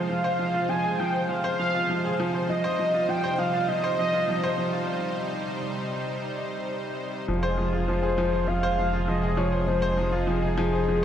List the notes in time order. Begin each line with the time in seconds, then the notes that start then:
Already playing: C3 F3 G#3 F4 G#4 C5
0.09 F3 F5
0.24 C5
0.39 F3
0.54 F4
0.69 F3 G#5
0.84 G#4
0.98 F3 G5
1.14 C5
1.29 F3 F5
1.44 C5
1.59 F3 F5
1.75 F4
1.90 F3
2.05 G#4
2.20 F3
2.34 C5
2.49 F3 G3 D#4 D#5
2.64 C5
2.79 F3
2.94 F4
3.09 F3 G5
3.24 C5
3.38 F3 F5
3.54 F4
3.68 F3 D#5
3.84 C5
3.99 F3 D#5
4.14 F4
4.28 F3
4.43 C5
4.58 F3
4.73 F4
7.28 F1 C3 F3 G#3 F4 G#4
7.43 C5
7.58 F3
7.73 F4
7.88 F3 C5
8.03 G#4
8.18 F3
8.33 C5
8.47 F3 F5
8.63 C5
8.79 F3
8.93 F4
9.08 F3 D#5
9.23 G#4
9.37 F3 C#5
9.52 C5
9.68 F3 D#4 C5
9.82 C5
9.97 F3
10.12 F4
10.27 F3
10.42 G#4
10.57 F3 G#4
10.73 C5
10.88 F3